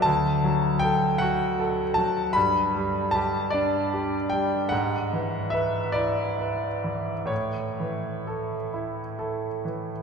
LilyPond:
<<
  \new Staff \with { instrumentName = "Grand piano" } { \time 6/8 \key d \major \tempo 4. = 50 a''4 g''8 fis''4 a''8 | b''4 a''8 d''4 g''8 | fis''4 e''8 d''4. | cis''2~ cis''8 r8 | }
  \new Staff \with { instrumentName = "Grand piano" } { \time 6/8 \key d \major d,8 fis8 a'8 fis'8 a'8 fis8 | g,8 g8 g'8 d'8 g'8 g8 | gis,8 e8 b'8 e'8 b'8 e8 | a,8 e8 a'8 e'8 a'8 e8 | }
>>